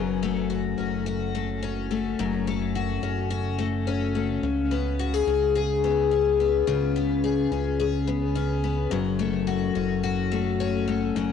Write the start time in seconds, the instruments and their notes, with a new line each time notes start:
Already playing: analog synth bass F#1, twelve-string acoustic guitar F#2 C#4
0.23 twelve-string acoustic guitar A3
0.50 twelve-string acoustic guitar F#4
0.78 analog synth bass F#1, twelve-string acoustic guitar C#4
1.06 twelve-string acoustic guitar F#4
1.35 twelve-string acoustic guitar A3
1.62 twelve-string acoustic guitar C#4
1.91 twelve-string acoustic guitar A3
2.19 analog synth bass F#1, twelve-string acoustic guitar F#2
2.47 twelve-string acoustic guitar A3
2.75 twelve-string acoustic guitar F#4
3.03 analog synth bass F#1, twelve-string acoustic guitar C#4
3.30 twelve-string acoustic guitar F#4
3.58 twelve-string acoustic guitar A3
3.87 twelve-string acoustic guitar C#4
4.15 twelve-string acoustic guitar A3
4.43 analog synth bass C#2, twelve-string acoustic guitar C#3
4.71 twelve-string acoustic guitar B3
4.99 twelve-string acoustic guitar F#4
5.14 twelve-string acoustic guitar G#4
5.27 analog synth bass C#2, twelve-string acoustic guitar C#4
5.56 twelve-string acoustic guitar G#4
5.84 twelve-string acoustic guitar B3
6.11 twelve-string acoustic guitar C#4
6.40 twelve-string acoustic guitar B3
6.67 analog synth bass C#2, twelve-string acoustic guitar C#3
6.96 twelve-string acoustic guitar B3
7.24 twelve-string acoustic guitar G#4
7.51 analog synth bass C#2, twelve-string acoustic guitar C#4
7.80 twelve-string acoustic guitar G#4
8.07 twelve-string acoustic guitar B3
8.35 twelve-string acoustic guitar C#4
8.64 twelve-string acoustic guitar B3
8.91 analog synth bass F#1, twelve-string acoustic guitar F#2
9.19 twelve-string acoustic guitar A3
9.47 twelve-string acoustic guitar F#4
9.75 analog synth bass F#1, twelve-string acoustic guitar C#4
10.04 twelve-string acoustic guitar F#4
10.32 twelve-string acoustic guitar A3
10.60 twelve-string acoustic guitar C#4
10.88 twelve-string acoustic guitar A3
11.15 analog synth bass F#1, twelve-string acoustic guitar F#2